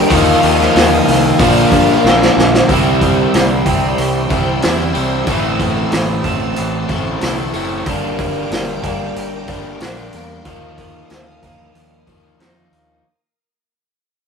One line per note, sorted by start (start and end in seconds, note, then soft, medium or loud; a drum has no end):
0.00 0.10 G3 medium
0.00 0.10 G3 loud
0.00 0.11 A#3 medium
0.00 0.10 D4 loud
0.00 1.36 A#4 medium
0.09 0.34 D#2 medium
0.09 1.37 D#3 loud
0.09 1.38 D#3 loud
0.09 1.38 F3 loud
0.09 0.42 F3 medium
0.09 1.38 F3 loud
0.09 1.38 A#3 loud
0.09 1.39 A#3 medium
0.09 1.39 D#4 loud
0.09 2.67 F5 medium
0.09 1.39 D#6 medium
0.09 kick loud
0.09 open hi-hat medium
0.13 1.39 D#4 loud
0.13 1.39 A#4 loud
0.43 0.67 D#2 loud
0.43 1.07 F3 medium
0.43 open hi-hat medium
0.60 snare soft
0.75 0.99 D#2 medium
0.75 1.40 A#3 medium
0.75 snare loud
0.75 open hi-hat medium
1.08 1.31 C2 medium
1.08 1.39 F3 medium
1.08 snare soft
1.08 open hi-hat medium
1.39 1.63 A#1 loud
1.39 2.67 A#2 loud
1.39 2.67 A#2 medium
1.39 2.67 D3 loud
1.39 2.67 D3 medium
1.39 1.71 F3 medium
1.39 2.67 F3 loud
1.39 2.67 A#3 loud
1.39 2.68 A#3 medium
1.39 2.68 D4 loud
1.39 2.68 A#4 loud
1.39 2.69 A#4 medium
1.39 2.69 D6 medium
1.39 kick loud
1.39 open hi-hat medium
1.72 1.96 G2 medium
1.72 2.37 F3 medium
1.72 kick medium
1.72 open hi-hat medium
2.04 2.28 A#1 loud
2.04 2.69 A#3 medium
2.04 snare medium
2.22 snare medium
2.36 2.60 A#1 medium
2.36 2.69 F3 medium
2.36 snare medium
2.54 snare loud
2.68 3.25 C2 medium
2.68 4.29 C3 medium
2.68 3.64 C3 medium
2.68 4.29 E3 medium
2.68 3.01 G3 medium
2.68 3.64 G3 medium
2.68 4.29 G3 loud
2.68 3.66 C4 medium
2.68 4.29 C4 medium
2.68 3.66 E4 medium
2.68 4.28 E4 loud
2.68 3.64 G4 medium
2.68 7.83 C5 medium
2.68 5.26 G5 medium
2.68 7.83 E6 medium
2.68 kick loud
2.68 open hi-hat medium
3.01 3.33 G3 medium
3.01 kick medium
3.01 open hi-hat medium
3.33 3.62 C2 medium
3.33 3.98 G3 medium
3.33 snare loud
3.33 open hi-hat medium
3.66 3.94 C2 medium
3.66 5.27 C3 medium
3.66 5.27 G3 medium
3.66 5.26 C4 medium
3.66 4.94 C4 medium
3.66 5.26 E4 medium
3.66 5.26 G4 medium
3.66 kick medium
3.66 open hi-hat medium
3.98 4.27 C2 medium
3.98 4.30 G3 medium
3.98 open hi-hat medium
4.29 4.59 C2 medium
4.29 4.60 C3 medium
4.29 4.61 E3 medium
4.29 4.61 G3 medium
4.29 5.27 G3 medium
4.29 4.61 C4 medium
4.29 4.60 E4 medium
4.29 kick medium
4.29 open hi-hat medium
4.62 4.92 E2 medium
4.62 5.25 C3 medium
4.62 5.26 E3 medium
4.62 5.26 G3 medium
4.62 5.26 C4 medium
4.62 5.28 E4 medium
4.62 5.27 E4 medium
4.62 snare loud
4.62 open hi-hat medium
4.94 5.24 C2 medium
4.94 5.26 C3 medium
4.94 5.26 G3 medium
4.94 5.25 C4 medium
4.94 5.28 C4 medium
4.94 open hi-hat soft
5.26 5.84 A1 medium
5.26 6.87 A2 medium
5.26 6.23 A2 medium
5.26 6.87 E3 medium
5.26 5.59 E3 medium
5.26 6.23 E3 medium
5.26 6.88 A3 medium
5.26 6.88 C4 medium
5.26 6.23 C4 medium
5.26 6.87 E4 loud
5.26 6.23 E4 loud
5.26 6.23 A4 medium
5.26 7.84 A5 medium
5.26 kick loud
5.26 open hi-hat medium
5.60 5.92 E3 medium
5.60 kick medium
5.60 open hi-hat medium
5.92 6.21 A1 medium
5.92 6.57 E3 medium
5.92 snare loud
5.92 open hi-hat medium
6.24 7.85 A2 medium
6.24 7.85 E3 medium
6.24 7.85 C4 medium
6.24 7.53 C4 medium
6.24 7.85 E4 medium
6.24 7.84 A4 medium
6.24 kick medium
6.24 open hi-hat medium
6.56 6.86 A1 medium
6.56 6.88 E3 medium
6.56 open hi-hat medium
6.88 7.18 A1 medium
6.88 7.20 A2 medium
6.88 7.87 E3 medium
6.88 7.20 E3 medium
6.88 7.20 A3 medium
6.88 7.20 C4 medium
6.88 7.19 E4 medium
6.88 kick medium
6.88 open hi-hat soft
7.21 7.50 C2 medium
7.21 7.84 A2 medium
7.21 7.85 E3 medium
7.21 7.85 A3 medium
7.21 7.85 C4 medium
7.21 7.87 E4 medium
7.21 7.86 E4 medium
7.21 snare loud
7.21 open hi-hat medium
7.53 7.82 F#1 medium
7.53 7.86 A2 medium
7.53 7.86 E3 medium
7.53 7.84 A3 medium
7.53 7.87 C4 medium
7.53 open hi-hat medium
7.85 8.43 G1 medium
7.85 9.46 G2 medium
7.85 8.82 G2 medium
7.85 9.47 D3 medium
7.85 8.82 D3 medium
7.85 8.82 G3 medium
7.85 8.19 G3 medium
7.85 9.47 G3 medium
7.85 8.84 A#3 medium
7.85 9.48 A#3 medium
7.85 8.82 D4 medium
7.85 9.47 D4 medium
7.85 13.00 A#4 medium
7.85 8.83 A#4 loud
7.85 10.42 G5 medium
7.85 10.42 D6 medium
7.85 kick loud
7.85 open hi-hat medium
8.19 8.52 G3 medium
8.19 kick medium
8.19 open hi-hat soft
8.50 8.79 G1 medium
8.50 9.16 G3 medium
8.50 snare loud
8.50 open hi-hat medium
8.83 9.12 G1 medium
8.83 10.44 G2 medium
8.83 10.44 D3 medium
8.83 10.44 G3 medium
8.83 10.46 A#3 medium
8.83 10.14 A#3 medium
8.83 10.43 D4 medium
8.83 10.47 A#4 medium
8.83 kick medium
8.83 open hi-hat medium
9.16 9.44 G1 medium
9.16 9.48 G3 medium
9.16 open hi-hat medium
9.48 9.76 G1 medium
9.48 9.78 G2 medium
9.48 9.80 D3 medium
9.48 9.79 G3 medium
9.48 10.46 G3 medium
9.48 9.82 A#3 medium
9.48 9.79 D4 medium
9.48 kick medium
9.48 open hi-hat soft
9.80 10.09 A#1 medium
9.80 10.43 G2 medium
9.80 10.44 D3 medium
9.80 10.44 G3 medium
9.80 10.47 A#3 medium
9.80 10.46 D4 medium
9.80 10.45 D4 medium
9.80 snare loud
9.80 open hi-hat medium
10.13 10.41 E2 medium
10.13 11.44 A#3 medium
10.13 open hi-hat medium
10.45 11.02 D#2 medium
10.45 11.40 D#3 medium
10.45 12.05 D#3 medium
10.45 11.41 F3 medium
10.45 12.06 F3 loud
10.45 10.78 F3 medium
10.45 11.41 A#3 medium
10.45 12.06 A#3 medium
10.45 11.41 D#4 medium
10.45 12.05 D#4 medium
10.45 11.41 A#4 loud
10.45 13.02 F5 medium
10.45 13.02 D#6 medium
10.45 kick loud
10.45 open hi-hat medium
10.78 11.11 F3 medium
10.78 kick medium
10.78 open hi-hat medium
11.10 11.39 D#2 medium
11.10 11.75 F3 medium
11.10 snare medium
11.10 open hi-hat medium
11.43 11.71 D#2 medium
11.43 13.03 D#3 medium
11.43 13.03 F3 medium
11.43 13.03 A#3 medium
11.43 12.72 A#3 medium
11.43 13.03 D#4 medium
11.43 13.02 A#4 medium
11.43 kick medium
11.43 open hi-hat medium
11.75 12.03 D#2 medium
11.75 12.06 F3 medium
11.75 open hi-hat medium
12.07 12.35 D#2 medium
12.07 12.37 D#3 medium
12.07 13.04 F3 medium
12.07 12.38 F3 medium
12.07 12.38 A#3 medium
12.07 12.37 D#4 medium
12.07 kick medium
12.07 open hi-hat medium
12.38 12.68 F2 medium
12.38 13.02 D#3 medium
12.38 13.02 F3 medium
12.38 13.03 A#3 medium
12.38 13.05 D#4 medium
12.38 13.04 D#4 medium
12.38 snare medium
12.38 open hi-hat medium
12.72 13.00 D#2 medium
12.72 13.05 A#3 medium
12.72 open hi-hat medium